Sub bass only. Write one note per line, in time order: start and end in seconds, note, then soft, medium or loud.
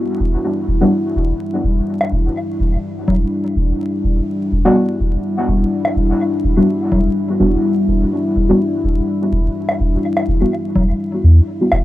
0.20 0.36 E1 medium
0.68 0.84 E1 loud
1.16 1.32 E1 medium
1.64 1.80 E1 medium
2.12 2.28 E1 medium
2.60 2.76 E1 loud
3.08 3.24 E1 medium
3.56 3.72 E1 medium
4.04 4.20 E1 medium
4.52 4.68 E1 loud
5.00 5.16 E1 medium
5.48 5.64 E1 loud
5.96 6.12 E1 medium
6.44 6.60 E1 loud
6.92 7.08 E1 medium
7.40 7.56 E1 loud
7.88 8.04 E1 medium
8.36 8.52 E1 loud
8.84 9.00 E1 medium
9.32 9.48 E1 loud
9.80 9.96 E1 medium
10.28 10.44 E1 loud
10.76 10.92 E1 medium
11.24 11.40 E2 loud
11.72 11.85 E1 medium